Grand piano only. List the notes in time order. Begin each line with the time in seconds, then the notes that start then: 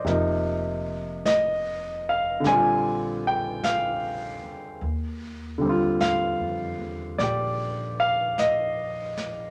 0.04 C3 F3 A#3
0.09 D#4
1.26 D#5
2.09 F5
2.40 D3 G3
2.47 C4 D5 G#5
2.51 F4
3.27 G5
3.64 F5
5.58 D3 G3
5.65 C4
5.69 F4
6.01 F5
7.18 D5
7.23 G4
8.00 F5
8.39 D#5